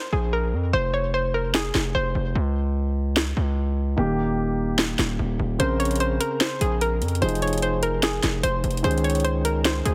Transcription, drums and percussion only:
1.54 snare
1.75 snare
3.17 snare
4.79 snare
4.99 snare
5.60 closed hi-hat
5.80 closed hi-hat
5.85 closed hi-hat
5.91 closed hi-hat
5.96 closed hi-hat
6.00 closed hi-hat
6.21 closed hi-hat
6.41 snare, closed hi-hat
6.61 closed hi-hat
6.81 closed hi-hat
7.02 closed hi-hat
7.08 closed hi-hat
7.15 closed hi-hat
7.22 closed hi-hat
7.29 closed hi-hat
7.35 closed hi-hat
7.42 closed hi-hat
7.47 closed hi-hat
7.53 closed hi-hat
7.58 closed hi-hat
7.62 closed hi-hat
7.83 closed hi-hat
8.03 snare, closed hi-hat
8.23 snare, closed hi-hat
8.44 closed hi-hat
8.64 closed hi-hat
8.71 closed hi-hat
8.77 closed hi-hat
8.84 closed hi-hat
8.91 closed hi-hat
8.98 closed hi-hat
9.04 closed hi-hat
9.10 closed hi-hat
9.15 closed hi-hat
9.20 closed hi-hat
9.25 closed hi-hat
9.45 closed hi-hat
9.65 snare, closed hi-hat
9.85 closed hi-hat

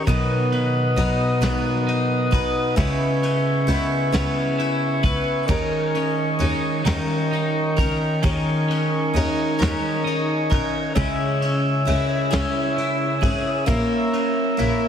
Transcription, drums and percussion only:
0.07 kick, ride
0.52 ride
0.97 ride
1.43 snare, ride
1.88 ride
2.33 kick, ride
2.77 kick, ride
3.23 ride
3.68 ride
4.14 snare, ride
4.59 ride
5.04 kick, ride
5.49 kick, ride
5.95 ride
6.40 ride
6.86 snare, ride
7.33 ride
7.78 kick, ride
8.24 kick, ride
8.71 ride
9.16 ride
9.62 snare, ride
10.07 ride
10.52 kick, ride
10.97 kick, ride
11.42 ride
11.87 ride
12.32 snare, ride
12.78 ride
13.23 kick, ride
13.68 kick, ride
14.13 ride
14.59 ride

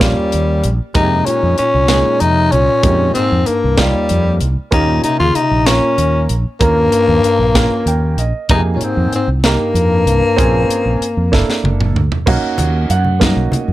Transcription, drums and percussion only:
0.01 kick, snare, closed hi-hat
0.32 closed hi-hat
0.64 closed hi-hat
0.95 kick, closed hi-hat
1.27 closed hi-hat
1.58 closed hi-hat
1.88 snare, closed hi-hat
2.20 closed hi-hat
2.52 closed hi-hat
2.83 kick, closed hi-hat
3.15 closed hi-hat
3.46 closed hi-hat
3.77 kick, snare, closed hi-hat
4.09 closed hi-hat
4.41 closed hi-hat
4.72 kick, closed hi-hat
5.04 closed hi-hat
5.35 closed hi-hat
5.66 snare, closed hi-hat
5.98 closed hi-hat
6.29 closed hi-hat
6.61 kick, closed hi-hat
6.92 closed hi-hat
7.24 closed hi-hat
7.55 kick, snare, closed hi-hat
7.87 closed hi-hat
8.18 closed hi-hat
8.49 kick, closed hi-hat
8.81 closed hi-hat
9.13 closed hi-hat
9.44 snare, closed hi-hat
9.75 closed hi-hat
10.07 closed hi-hat
10.38 kick, closed hi-hat
10.70 closed hi-hat
11.02 closed hi-hat
11.33 kick, snare
11.50 snare
11.65 high tom
11.81 mid tom
11.96 mid tom
12.12 floor tom
12.27 kick, crash, high conga, low conga
12.58 closed hi-hat, low conga
12.89 closed hi-hat, low conga
13.04 low conga
13.21 kick, snare, closed hi-hat, high conga, low conga
13.52 closed hi-hat, low conga
13.69 low conga

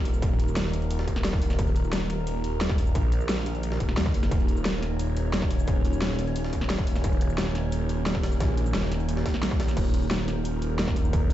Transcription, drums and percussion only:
0.05 closed hi-hat, open hi-hat, shaker
0.14 shaker
0.22 kick, closed hi-hat, shaker
0.39 closed hi-hat, shaker
0.48 shaker
0.56 snare, closed hi-hat, shaker
0.65 snare
0.73 closed hi-hat
0.82 closed hi-hat
0.91 closed hi-hat, shaker
0.99 snare
1.08 kick, closed hi-hat, shaker
1.16 snare
1.25 snare, closed hi-hat, open hi-hat, shaker
1.33 kick
1.42 closed hi-hat, open hi-hat, shaker
1.50 snare, shaker
1.59 kick, closed hi-hat, shaker
1.67 closed hi-hat
1.76 closed hi-hat, shaker
1.84 shaker
1.93 snare, closed hi-hat, shaker
2.10 snare, closed hi-hat
2.27 closed hi-hat, shaker
2.44 closed hi-hat, shaker
2.61 snare, closed hi-hat, shaker
2.70 kick, snare
2.78 closed hi-hat, open hi-hat, shaker
2.87 shaker
2.95 kick, closed hi-hat, shaker
3.12 closed hi-hat, shaker
3.21 shaker
3.29 snare, closed hi-hat, shaker
3.38 snare
3.46 closed hi-hat
3.55 closed hi-hat
3.63 closed hi-hat, shaker
3.72 snare
3.80 kick, closed hi-hat, shaker
3.89 snare
3.97 snare, closed hi-hat, open hi-hat, shaker
4.06 kick
4.14 closed hi-hat, open hi-hat, shaker
4.23 snare, shaker
4.31 kick, closed hi-hat, shaker
4.40 closed hi-hat
4.48 closed hi-hat, shaker
4.57 shaker
4.65 snare, closed hi-hat, shaker
4.82 snare, closed hi-hat
4.99 closed hi-hat, shaker
5.17 closed hi-hat, shaker
5.34 snare, closed hi-hat, shaker
5.42 kick, snare
5.51 closed hi-hat, open hi-hat, shaker
5.59 shaker
5.68 kick, closed hi-hat, shaker
5.85 closed hi-hat, shaker
5.93 shaker
6.02 snare, closed hi-hat, shaker
6.10 snare
6.19 closed hi-hat
6.27 closed hi-hat
6.36 closed hi-hat, shaker
6.44 snare
6.53 kick, closed hi-hat, shaker
6.61 snare
6.70 snare, closed hi-hat, open hi-hat, shaker
6.79 kick
6.87 closed hi-hat, open hi-hat, shaker
6.95 snare, shaker
7.04 kick, closed hi-hat, shaker
7.13 closed hi-hat
7.21 closed hi-hat, shaker
7.30 shaker
7.38 snare, closed hi-hat, shaker
7.55 snare, closed hi-hat
7.72 closed hi-hat, shaker
7.89 closed hi-hat, shaker
8.06 snare, closed hi-hat, shaker
8.15 kick, snare
8.23 snare, closed hi-hat, open hi-hat, shaker
8.32 shaker
8.40 kick, snare, closed hi-hat, shaker
8.57 closed hi-hat, shaker
8.66 shaker
8.75 snare, closed hi-hat, shaker
8.83 snare
8.92 snare, closed hi-hat, shaker
9.00 closed hi-hat
9.09 closed hi-hat, shaker
9.17 snare
9.26 kick, snare, closed hi-hat, shaker
9.34 snare
9.43 snare, closed hi-hat, open hi-hat, shaker
9.51 kick
9.60 snare, closed hi-hat, open hi-hat, shaker
9.68 snare, shaker
9.77 kick, closed hi-hat, crash, shaker
9.85 closed hi-hat
9.94 closed hi-hat, shaker
10.02 shaker
10.11 snare, closed hi-hat, shaker
10.28 snare, closed hi-hat
10.45 closed hi-hat, shaker
10.62 closed hi-hat, shaker
10.79 snare, closed hi-hat, shaker
10.88 kick, snare
10.96 closed hi-hat, open hi-hat, shaker
11.05 shaker
11.13 kick, closed hi-hat, shaker
11.30 closed hi-hat, shaker

